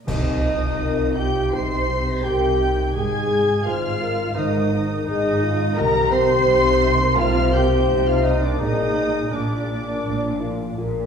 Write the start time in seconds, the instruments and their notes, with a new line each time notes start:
Already playing: harp A#4
0.07 double bass section C2, harp C3, cello section C3, timpani C3, clarinet D#4, viola section D#4, french horn section G4, violin section D#5 D#6, flute section D#5, concert bass drum, crash
0.31 harp C4
0.43 french horn section F4
0.79 double bass section C2, cello section C3, harp A#4
1.04 harp D#4
1.16 viola section G4, clarinet G4, flute section G5, violin section G5 G6
1.29 harp C4
1.52 double bass section C2, cello section C3, harp G3, french horn section D#4, viola section C5, clarinet C5, violin section C6 C7, flute section C6
1.78 harp C4
1.88 french horn section G4
2.02 harp D#4
2.23 double bass section C2, cello section C3, viola section G4, clarinet G4, french horn section A#4, harp A#4, flute section G5, violin section G5 G6
2.49 harp D#4
2.72 harp C4
2.94 double bass section G#1, harp G#2, cello section G#2, clarinet G#4, french horn section G#4, viola section G#4, flute section G#5, violin section G#5 G#6
3.18 harp C4
3.42 harp D#4
3.65 double bass section G#1, cello section G#2, clarinet F4, viola section F4, harp G#4, french horn section C5, violin section F5 F6, flute section F5
3.90 harp D#4
4.02 french horn section A#4
4.13 harp C4
4.35 double bass section G#1, cello section G#2, harp D#3, clarinet D#4, viola section D#4, french horn section C5, violin section D#5 D#6, flute section D#5
4.61 harp C4
4.73 french horn section A#4
4.84 harp D#4
5.06 double bass section G#1, cello section G#2, viola section D#4, clarinet D#4, harp G#4, french horn section G#4, violin section D#5 D#6, flute section D#5
5.31 harp D#4
5.43 french horn section F4
5.55 harp C4
5.77 double bass section C2, cello section C3, harp C3, french horn section G4, viola section A#4, clarinet A#4, violin section A#5 A#6, flute section A#5
6.03 harp A#3
6.11 clarinet C5, viola section C5, violin section C6 C7, flute section C6
6.26 harp D#4
6.48 double bass section C2, cello section C3, harp G4
6.72 harp D#4
6.95 harp A#3
7.16 double bass section C2, cello section C3, harp G3, clarinet F4, viola section F4, french horn section C5, flute section F5, violin section F5 F6
7.42 harp A#3
7.52 clarinet G4, viola section G4, violin section G5 G6, flute section G5
7.66 harp D#4
7.89 double bass section C2, cello section C3, harp G4
8.07 clarinet F4, viola section F4, violin section F5 F6, flute section F5
8.12 harp D#4
8.23 clarinet D#4, viola section D#4, flute section D#5, violin section D#5 D#6
8.37 harp A#3
8.41 viola section D4, clarinet D4, flute section D5, violin section D5 D6
8.59 double bass section A#1, harp A#2, cello section A#2, clarinet D#4, viola section D#4, french horn section G#4, flute section D#5, violin section D#5 D#6
8.84 harp A#3
9.08 harp F4
9.31 double bass section A#1, cello section A#2, clarinet D4, french horn section D4, viola section D4, harp G#4, flute section D5, violin section D5 D6
9.57 harp F4
9.81 harp A#3
10.05 double bass section A#1, cello section A#2, harp F3
10.29 harp A#3
10.42 french horn section F4
10.54 harp F4
10.78 double bass section A#1, cello section A#2, harp G#4, french horn section A#4
11.02 harp F4